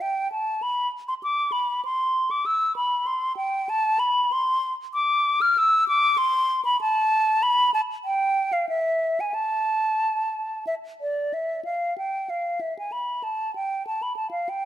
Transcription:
0, 0, Header, 1, 2, 480
1, 0, Start_track
1, 0, Time_signature, 3, 2, 24, 8
1, 0, Key_signature, 0, "minor"
1, 0, Tempo, 615385
1, 2877, Tempo, 623701
1, 6237, Tempo, 657895
1, 8637, Tempo, 628931
1, 11161, End_track
2, 0, Start_track
2, 0, Title_t, "Flute"
2, 0, Program_c, 0, 73
2, 8, Note_on_c, 0, 79, 65
2, 245, Note_off_c, 0, 79, 0
2, 249, Note_on_c, 0, 81, 69
2, 487, Note_on_c, 0, 83, 67
2, 499, Note_off_c, 0, 81, 0
2, 683, Note_off_c, 0, 83, 0
2, 843, Note_on_c, 0, 84, 66
2, 890, Note_off_c, 0, 84, 0
2, 962, Note_on_c, 0, 86, 77
2, 1186, Note_on_c, 0, 83, 68
2, 1197, Note_off_c, 0, 86, 0
2, 1435, Note_off_c, 0, 83, 0
2, 1442, Note_on_c, 0, 84, 77
2, 1800, Note_on_c, 0, 86, 73
2, 1812, Note_off_c, 0, 84, 0
2, 1918, Note_on_c, 0, 88, 77
2, 1930, Note_off_c, 0, 86, 0
2, 2151, Note_off_c, 0, 88, 0
2, 2155, Note_on_c, 0, 83, 72
2, 2391, Note_on_c, 0, 84, 71
2, 2402, Note_off_c, 0, 83, 0
2, 2621, Note_off_c, 0, 84, 0
2, 2626, Note_on_c, 0, 79, 77
2, 2881, Note_on_c, 0, 81, 89
2, 2892, Note_off_c, 0, 79, 0
2, 3112, Note_on_c, 0, 83, 88
2, 3124, Note_off_c, 0, 81, 0
2, 3365, Note_on_c, 0, 84, 91
2, 3377, Note_off_c, 0, 83, 0
2, 3671, Note_off_c, 0, 84, 0
2, 3839, Note_on_c, 0, 86, 96
2, 4205, Note_on_c, 0, 89, 88
2, 4217, Note_off_c, 0, 86, 0
2, 4332, Note_on_c, 0, 88, 97
2, 4344, Note_off_c, 0, 89, 0
2, 4562, Note_off_c, 0, 88, 0
2, 4566, Note_on_c, 0, 86, 92
2, 4793, Note_on_c, 0, 84, 96
2, 4804, Note_off_c, 0, 86, 0
2, 5151, Note_off_c, 0, 84, 0
2, 5155, Note_on_c, 0, 83, 91
2, 5271, Note_off_c, 0, 83, 0
2, 5280, Note_on_c, 0, 81, 96
2, 5754, Note_on_c, 0, 83, 93
2, 5766, Note_off_c, 0, 81, 0
2, 5991, Note_off_c, 0, 83, 0
2, 5996, Note_on_c, 0, 81, 87
2, 6051, Note_off_c, 0, 81, 0
2, 6233, Note_on_c, 0, 79, 82
2, 6581, Note_on_c, 0, 77, 72
2, 6592, Note_off_c, 0, 79, 0
2, 6697, Note_off_c, 0, 77, 0
2, 6701, Note_on_c, 0, 76, 77
2, 7075, Note_on_c, 0, 80, 67
2, 7086, Note_off_c, 0, 76, 0
2, 7177, Note_on_c, 0, 81, 76
2, 7188, Note_off_c, 0, 80, 0
2, 8141, Note_off_c, 0, 81, 0
2, 8145, Note_on_c, 0, 76, 61
2, 8201, Note_off_c, 0, 76, 0
2, 8394, Note_on_c, 0, 74, 58
2, 8631, Note_on_c, 0, 76, 56
2, 8643, Note_off_c, 0, 74, 0
2, 8864, Note_off_c, 0, 76, 0
2, 8869, Note_on_c, 0, 77, 60
2, 9116, Note_off_c, 0, 77, 0
2, 9122, Note_on_c, 0, 79, 57
2, 9364, Note_on_c, 0, 77, 52
2, 9375, Note_off_c, 0, 79, 0
2, 9601, Note_on_c, 0, 76, 55
2, 9613, Note_off_c, 0, 77, 0
2, 9723, Note_off_c, 0, 76, 0
2, 9738, Note_on_c, 0, 80, 48
2, 9841, Note_on_c, 0, 83, 56
2, 9853, Note_off_c, 0, 80, 0
2, 10081, Note_on_c, 0, 81, 58
2, 10092, Note_off_c, 0, 83, 0
2, 10321, Note_off_c, 0, 81, 0
2, 10325, Note_on_c, 0, 79, 60
2, 10558, Note_off_c, 0, 79, 0
2, 10564, Note_on_c, 0, 81, 59
2, 10683, Note_on_c, 0, 83, 53
2, 10695, Note_off_c, 0, 81, 0
2, 10785, Note_off_c, 0, 83, 0
2, 10790, Note_on_c, 0, 81, 56
2, 10896, Note_off_c, 0, 81, 0
2, 10901, Note_on_c, 0, 77, 55
2, 11039, Note_on_c, 0, 79, 65
2, 11050, Note_off_c, 0, 77, 0
2, 11161, Note_off_c, 0, 79, 0
2, 11161, End_track
0, 0, End_of_file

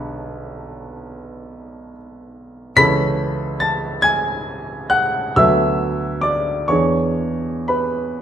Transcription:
0, 0, Header, 1, 2, 480
1, 0, Start_track
1, 0, Key_signature, 3, "major"
1, 0, Tempo, 837989
1, 1600, Time_signature, 12, 3, 24, 8
1, 2568, Tempo, 879765
1, 3528, Tempo, 940439
1, 4008, Tempo, 1039861
1, 4483, End_track
2, 0, Start_track
2, 0, Title_t, "Grand piano"
2, 0, Program_c, 0, 0
2, 0, Control_c, 0, 64, 127
2, 0, Note_on_c, 0, 35, 68
2, 0, Note_on_c, 0, 50, 51
2, 0, Note_on_c, 0, 62, 53
2, 0, Note_on_c, 0, 68, 53
2, 0, Note_on_c, 0, 71, 71
2, 0, Note_on_c, 0, 73, 67
2, 0, Note_on_c, 0, 83, 87
2, 0, Note_on_c, 0, 85, 94
2, 1101, Note_off_c, 0, 71, 0
2, 1121, Note_off_c, 0, 83, 0
2, 1563, Note_off_c, 0, 35, 0
2, 1565, Note_off_c, 0, 50, 0
2, 1568, Note_off_c, 0, 62, 0
2, 1568, Note_off_c, 0, 68, 0
2, 1582, Note_on_c, 0, 37, 66
2, 1585, Note_on_c, 0, 95, 127
2, 1589, Note_on_c, 0, 52, 58
2, 1589, Note_on_c, 0, 83, 97
2, 1595, Note_on_c, 0, 61, 57
2, 1598, Note_on_c, 0, 69, 57
2, 1610, Control_c, 0, 64, 0
2, 1613, Note_off_c, 0, 85, 0
2, 1615, Note_off_c, 0, 73, 0
2, 1714, Control_c, 0, 64, 127
2, 2049, Note_off_c, 0, 83, 0
2, 2063, Note_on_c, 0, 93, 90
2, 2069, Note_off_c, 0, 95, 0
2, 2072, Note_on_c, 0, 81, 64
2, 2301, Note_off_c, 0, 81, 0
2, 2304, Note_on_c, 0, 92, 106
2, 2313, Note_off_c, 0, 93, 0
2, 2315, Note_on_c, 0, 80, 81
2, 2785, Note_off_c, 0, 80, 0
2, 2794, Note_on_c, 0, 90, 100
2, 2799, Note_on_c, 0, 78, 80
2, 2801, Note_off_c, 0, 92, 0
2, 3020, Note_off_c, 0, 37, 0
2, 3023, Note_off_c, 0, 52, 0
2, 3026, Note_off_c, 0, 61, 0
2, 3028, Note_off_c, 0, 69, 0
2, 3028, Note_off_c, 0, 78, 0
2, 3043, Note_off_c, 0, 90, 0
2, 3048, Note_on_c, 0, 38, 67
2, 3048, Note_on_c, 0, 88, 103
2, 3051, Note_on_c, 0, 54, 57
2, 3057, Note_on_c, 0, 76, 81
2, 3058, Note_on_c, 0, 59, 54
2, 3059, Control_c, 0, 64, 0
2, 3062, Note_on_c, 0, 69, 53
2, 3149, Control_c, 0, 64, 127
2, 3509, Note_off_c, 0, 76, 0
2, 3513, Note_on_c, 0, 86, 88
2, 3523, Note_on_c, 0, 74, 69
2, 3526, Note_off_c, 0, 88, 0
2, 3740, Note_off_c, 0, 38, 0
2, 3741, Note_off_c, 0, 54, 0
2, 3743, Note_off_c, 0, 74, 0
2, 3745, Note_off_c, 0, 59, 0
2, 3747, Note_off_c, 0, 69, 0
2, 3751, Note_on_c, 0, 85, 82
2, 3753, Note_on_c, 0, 40, 56
2, 3755, Note_off_c, 0, 86, 0
2, 3759, Note_on_c, 0, 73, 67
2, 3761, Note_on_c, 0, 52, 43
2, 3764, Note_on_c, 0, 62, 42
2, 3769, Note_on_c, 0, 68, 44
2, 3771, Control_c, 0, 64, 0
2, 3878, Control_c, 0, 64, 127
2, 4223, Note_off_c, 0, 73, 0
2, 4237, Note_on_c, 0, 83, 75
2, 4238, Note_off_c, 0, 85, 0
2, 4243, Note_on_c, 0, 71, 58
2, 4465, Note_off_c, 0, 40, 0
2, 4469, Note_off_c, 0, 52, 0
2, 4470, Note_off_c, 0, 62, 0
2, 4470, Note_off_c, 0, 71, 0
2, 4473, Note_off_c, 0, 68, 0
2, 4474, Note_off_c, 0, 83, 0
2, 4483, End_track
0, 0, End_of_file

